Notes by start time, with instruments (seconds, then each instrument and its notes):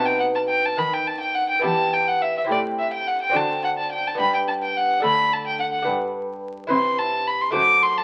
Already playing: lute B2 B3 D#4 F#4, cello B2
0.06 violin G5
0.20 violin F#5
0.35 violin A5
0.48 violin G5
0.66 violin A5
0.77 lute D#3, cello D#3, violin B5
0.93 violin G5
1.07 violin A5
1.21 violin G5
1.35 violin F#5
1.50 violin G5
1.59 lute B3 E4 G4
1.64 lute E2, cello E2, violin A5
1.93 violin G5
2.08 violin F#5
2.22 violin E5
2.37 violin E5
2.44 lute C4 E4 G4
2.49 lute A2, cello A2, violin D5
2.79 violin E5
2.94 violin G5
3.08 violin F#5
3.22 violin G5
3.29 lute C4 D4 F#4
3.34 cello D3, lute D3, violin A5
3.65 violin F#5
3.78 violin A5
3.92 violin G5
4.07 violin A5
4.15 lute B3 D4 G4
4.19 cello G2, lute G2, violin B5
4.34 violin G5
4.48 violin A5
4.63 violin G5
4.77 violin F#5
5.00 lute D2 D4 A4, cello D2
5.05 violin B5
5.33 violin A5
5.47 violin G5
5.60 violin F#5
5.72 violin F#5
5.82 lute G2 D4 B4, cello G2
6.67 lute C3 E4 B4, cello C3, violin C6
6.99 violin A5
7.27 violin B5
7.41 violin C6
7.51 lute A3 F#4 C5, violin D6
7.55 cello F#2, lute F#2
7.83 violin C6
7.97 violin A5